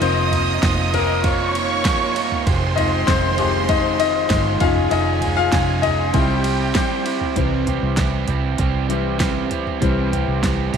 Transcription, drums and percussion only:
0.02 ride medium
0.32 floor tom medium
0.32 ride medium
0.63 kick loud
0.63 snare loud
0.63 ride medium
0.94 floor tom medium
0.94 ride medium
1.24 kick loud
1.24 ride medium
1.55 ride medium
1.85 kick loud
1.85 snare loud
1.85 ride medium
2.16 ride medium
2.32 floor tom medium
2.47 kick loud
2.47 ride medium
2.77 floor tom medium
2.77 ride medium
3.08 kick loud
3.08 snare loud
3.08 ride medium
3.38 floor tom medium
3.38 ride medium
3.69 kick loud
3.69 ride medium
4.00 ride medium
4.30 kick loud
4.30 snare loud
4.30 ride medium
4.60 kick loud
4.60 ride medium
4.76 floor tom medium
4.91 ride medium
5.21 floor tom medium
5.21 ride medium
5.52 kick loud
5.52 snare loud
5.52 ride medium
5.83 floor tom medium
5.83 ride medium
6.14 kick loud
6.14 ride medium
6.44 ride medium
6.75 kick loud
6.75 snare loud
6.75 ride medium
7.06 ride medium
7.21 floor tom medium
7.36 kick loud
7.36 closed hi-hat medium
7.67 closed hi-hat medium
7.67 floor tom medium
7.97 kick loud
7.97 snare loud
7.97 closed hi-hat medium
8.28 closed hi-hat medium
8.28 floor tom medium
8.58 kick loud
8.58 closed hi-hat medium
8.90 closed hi-hat medium
9.20 kick loud
9.20 snare loud
9.20 closed hi-hat loud
9.51 closed hi-hat medium
9.51 floor tom medium
9.67 floor tom medium
9.82 kick loud
9.82 closed hi-hat medium
10.13 closed hi-hat medium
10.13 floor tom medium
10.43 kick loud
10.43 snare loud
10.43 closed hi-hat medium
10.74 closed hi-hat medium
10.74 floor tom medium

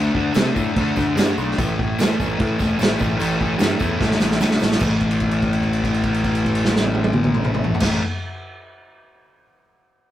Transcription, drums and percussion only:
0.15 kick medium
0.34 snare loud
0.34 tambourine loud
0.34 crash medium
0.56 kick loud
0.56 tambourine medium
0.76 kick loud
0.76 tambourine soft
0.76 crash medium
0.96 kick loud
0.96 snare soft
0.96 tambourine medium
1.17 snare loud
1.17 tambourine loud
1.17 crash medium
1.38 tambourine medium
1.51 snare soft
1.58 kick loud
1.58 tambourine medium
1.58 crash medium
1.79 kick medium
1.99 snare loud
1.99 tambourine loud
1.99 crash medium
2.20 kick loud
2.20 tambourine medium
2.40 kick loud
2.40 tambourine soft
2.40 crash medium
2.59 kick loud
2.59 snare soft
2.59 tambourine medium
2.79 snare loud
2.79 tambourine loud
2.79 crash medium
2.99 kick loud
2.99 tambourine medium
3.20 tambourine medium
3.20 crash medium
3.41 kick medium
3.41 tambourine soft
3.59 snare loud
3.59 tambourine loud
3.59 crash medium
3.79 kick medium
3.79 tambourine medium
4.00 kick loud
4.00 snare medium
4.00 tambourine soft
4.11 snare medium
4.20 snare medium
4.20 tambourine medium
4.32 snare medium
4.40 snare loud
4.40 tambourine loud
4.51 snare medium
4.60 snare loud
4.60 tambourine medium
4.71 snare loud
4.79 kick loud
4.79 crash loud
4.79 tambourine medium
5.00 kick medium
5.00 crash soft
5.11 crash soft
5.20 kick medium
5.20 crash soft
5.31 crash soft
5.42 kick medium
5.42 crash soft
5.53 crash soft
5.63 kick medium
5.63 crash soft
5.73 crash medium
5.84 kick medium
5.84 crash medium
5.94 crash soft
6.03 kick medium
6.03 crash medium
6.14 crash medium
6.24 kick medium
6.24 crash medium
6.35 crash medium
6.45 kick medium
6.45 crash medium
6.55 crash medium
6.65 snare medium
6.76 snare loud
6.84 high tom loud
6.94 high tom loud
7.04 high tom loud
7.13 mid tom loud
7.24 mid tom loud
7.34 mid tom loud
7.44 mid tom loud
7.54 mid tom loud
7.64 floor tom loud
7.75 floor tom loud
7.80 kick loud
7.80 snare loud
7.80 crash loud

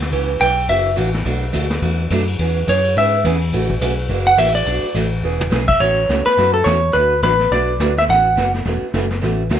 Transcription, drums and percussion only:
0.02 snare soft
0.12 kick soft
0.12 ride medium
0.40 kick soft
0.40 hi-hat pedal medium
0.40 ride medium
0.58 ride soft
0.68 kick soft
0.68 ride medium
0.97 kick soft
0.97 hi-hat pedal medium
0.97 ride medium
1.14 snare soft
1.25 kick soft
1.25 ride medium
1.53 kick soft
1.53 hi-hat pedal medium
1.53 ride medium
1.70 snare medium
1.70 ride medium
1.82 kick soft
1.82 ride medium
2.10 kick soft
2.10 hi-hat pedal medium
2.10 ride medium
2.27 ride medium
2.39 kick soft
2.39 ride medium
2.67 kick soft
2.67 hi-hat pedal medium
2.67 ride medium
2.85 ride medium
2.96 kick soft
2.96 ride medium
3.24 kick soft
3.24 hi-hat pedal medium
3.24 ride medium
3.42 ride medium
3.53 kick soft
3.53 ride medium
3.70 kick medium
3.81 kick soft
3.81 hi-hat pedal medium
3.81 ride medium
3.99 ride medium
4.09 kick soft
4.09 ride medium
4.38 kick soft
4.38 hi-hat pedal medium
4.38 ride medium
4.55 ride medium
4.66 kick soft
4.66 ride medium
4.95 kick soft
4.95 hi-hat pedal medium
4.95 ride medium
5.41 high tom medium
5.52 snare medium
5.52 hi-hat pedal medium
5.69 kick medium
5.69 crash medium
5.80 brush sweep medium
5.80 kick soft
5.80 snare soft
6.09 kick soft
6.09 snare medium
6.09 hi-hat pedal medium
6.26 snare soft
6.38 brush sweep soft
6.38 kick soft
6.38 snare soft
6.66 kick soft
6.66 snare medium
6.66 hi-hat pedal medium
6.94 brush sweep soft
6.94 kick soft
6.94 snare soft
7.23 kick soft
7.23 snare medium
7.23 hi-hat pedal medium
7.39 snare soft
7.51 brush sweep soft
7.51 kick soft
7.51 snare soft
7.80 kick soft
7.80 snare medium
7.80 hi-hat pedal medium
7.98 snare soft
8.09 brush sweep soft
8.09 kick soft
8.09 snare soft
8.37 kick soft
8.37 snare medium
8.37 hi-hat pedal medium
8.54 snare soft
8.65 brush sweep medium
8.65 kick soft
8.65 snare soft
8.94 kick soft
8.94 snare medium
8.94 hi-hat pedal medium
9.11 snare soft
9.22 brush sweep medium
9.22 kick soft
9.22 snare soft
9.51 kick soft
9.51 snare medium
9.51 hi-hat pedal medium

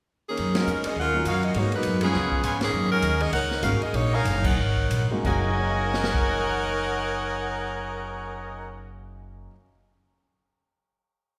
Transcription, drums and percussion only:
0.37 ride medium
0.55 snare medium
0.55 ride medium
0.67 hi-hat pedal medium
0.84 ride medium
1.25 hi-hat pedal soft
1.25 ride medium
1.43 ride soft
1.54 ride medium
1.72 ride soft
1.83 hi-hat pedal soft
1.83 ride medium
2.01 ride medium
2.13 snare soft
2.32 kick medium
2.44 hi-hat pedal medium
2.44 ride medium
2.61 snare medium
2.61 ride medium
3.02 hi-hat pedal medium
3.02 ride medium
3.20 ride soft
3.33 ride medium
3.51 snare soft
3.63 hi-hat pedal medium
3.63 ride medium
3.82 ride soft
3.94 ride medium
4.25 hi-hat pedal soft
4.25 ride medium
4.44 kick medium
4.44 crash medium
4.77 kick soft
4.91 hi-hat pedal soft
4.91 ride medium
5.25 kick medium
5.25 crash medium
5.94 snare medium
6.04 snare medium
6.15 kick medium

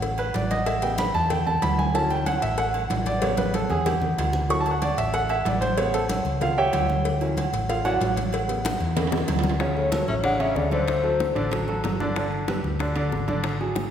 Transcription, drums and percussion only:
0.02 cowbell loud
0.02 high conga soft
0.02 low agogo medium
0.18 high conga soft
0.18 low agogo loud
0.34 cowbell medium
0.34 high conga medium
0.34 low timbale medium
0.51 cowbell medium
0.51 high conga medium
0.51 low agogo medium
0.66 cowbell loud
0.66 high conga soft
0.66 low agogo loud
0.82 cowbell medium
0.82 high conga soft
0.98 cowbell medium
0.98 high conga loud
0.98 low timbale medium
0.98 low agogo medium
1.14 high conga soft
1.14 low agogo medium
1.30 cowbell loud
1.30 high conga soft
1.30 low conga medium
1.30 low agogo medium
1.47 high conga soft
1.47 low conga medium
1.62 cowbell medium
1.62 high conga loud
1.62 low timbale medium
1.62 low agogo loud
1.79 high conga medium
1.95 cowbell loud
1.95 high conga soft
2.10 high conga soft
2.10 low agogo medium
2.26 cowbell medium
2.26 high conga medium
2.26 low timbale medium
2.26 low agogo loud
2.42 cowbell medium
2.42 high conga soft
2.58 cowbell loud
2.58 high conga soft
2.58 low agogo medium
2.74 high conga soft
2.74 low agogo loud
2.90 cowbell medium
2.90 high conga medium
2.90 low timbale medium
3.06 cowbell medium
3.06 high conga medium
3.06 low agogo medium
3.22 cowbell loud
3.22 high conga loud
3.22 low agogo loud
3.37 cowbell medium
3.37 high conga loud
3.54 cowbell medium
3.54 high conga medium
3.54 low timbale medium
3.54 low agogo medium
3.70 low conga loud
3.70 low agogo medium
3.86 cowbell loud
3.86 low conga loud
3.86 low agogo loud
4.02 low conga loud
4.18 cowbell medium
4.18 low timbale medium
4.18 low agogo loud
4.33 low conga medium
4.49 cowbell loud
4.49 high conga soft
4.66 high conga soft
4.66 low agogo medium
4.82 cowbell medium
4.82 high conga medium
4.82 low timbale medium
4.82 low agogo loud
4.97 cowbell medium
4.97 high conga soft
5.14 cowbell loud
5.14 high conga soft
5.14 low agogo medium
5.29 high conga soft
5.29 low agogo loud
5.45 cowbell medium
5.45 high conga medium
5.45 low timbale medium
5.62 cowbell medium
5.62 high conga medium
5.62 low agogo medium
5.78 cowbell loud
5.78 low agogo loud
5.94 cowbell medium
5.94 high conga soft
6.09 cowbell medium
6.09 high conga loud
6.09 low timbale medium
6.09 low agogo medium
6.25 high conga soft
6.25 low agogo medium
6.41 cowbell medium
6.41 high conga soft
6.41 low conga medium
6.41 low agogo loud
6.58 high conga soft
6.73 cowbell medium
6.73 high conga medium
6.73 low timbale medium
6.73 low agogo loud
6.90 high conga medium
7.05 cowbell loud
7.05 high conga soft
7.21 high conga soft
7.21 low agogo medium
7.37 cowbell medium
7.37 high conga medium
7.37 low timbale medium
7.37 low agogo loud
7.53 cowbell medium
7.53 high conga soft
7.69 cowbell loud
7.69 high conga soft
7.69 low agogo medium
7.85 high conga soft
7.85 low agogo loud
8.01 cowbell medium
8.01 high conga medium
8.01 low timbale medium
8.17 cowbell medium
8.17 high conga medium
8.17 low agogo medium
8.33 cowbell loud
8.33 high conga soft
8.33 low agogo loud
8.49 cowbell medium
8.49 high conga soft
8.65 cowbell medium
8.65 high bongo medium
8.65 high conga medium
8.65 low timbale medium
8.65 low agogo medium
8.80 high conga soft
8.80 low agogo medium
8.97 cowbell loud
8.97 low bongo loud
8.97 high conga soft
8.97 low conga loud
8.97 high timbale loud
8.97 low agogo medium
9.07 high timbale loud
9.12 low bongo loud
9.12 high conga soft
9.18 low timbale medium
9.28 cowbell medium
9.28 low bongo medium
9.28 high conga medium
9.28 low timbale medium
9.28 low agogo loud
9.39 low timbale medium
9.43 low bongo medium
9.43 high conga medium
9.49 low timbale medium
9.60 high bongo medium
9.60 high conga soft
9.60 high timbale medium
9.77 high conga soft
9.92 high bongo medium
9.92 high conga loud
9.92 high timbale medium
10.08 high bongo soft
10.24 high bongo medium
10.24 high conga soft
10.24 high timbale medium
10.40 high bongo soft
10.40 high conga soft
10.40 high timbale medium
10.56 high bongo soft
10.56 low bongo medium
10.56 high conga soft
10.71 high bongo soft
10.71 high conga medium
10.71 high timbale medium
10.88 high bongo medium
10.88 high timbale medium
11.03 high conga soft
11.20 high bongo medium
11.20 high conga medium
11.20 high timbale medium
11.36 high bongo soft
11.36 high conga soft
11.36 high timbale medium
11.51 high bongo medium
11.51 high conga soft
11.51 low conga medium
11.51 high timbale medium
11.68 high bongo soft
11.68 high conga soft
11.68 low conga medium
11.84 high bongo soft
11.84 low bongo medium
11.84 high conga medium
11.84 high timbale loud
11.84 low timbale medium
12.00 high bongo soft
12.00 high conga medium
12.16 high bongo medium
12.16 high conga soft
12.16 high timbale medium
12.32 high conga soft
12.48 high bongo medium
12.48 high conga medium
12.48 high timbale medium
12.64 high bongo soft
12.79 high bongo medium
12.79 high conga soft
12.79 high timbale medium
12.96 high bongo soft
12.96 high conga soft
12.96 high timbale medium
13.12 high bongo soft
13.12 low bongo medium
13.12 high conga soft
13.28 high bongo soft
13.28 high conga medium
13.28 high timbale medium
13.44 high bongo medium
13.44 high conga soft
13.44 high timbale medium
13.61 high conga soft
13.76 high bongo medium
13.76 high conga medium
13.76 high timbale medium

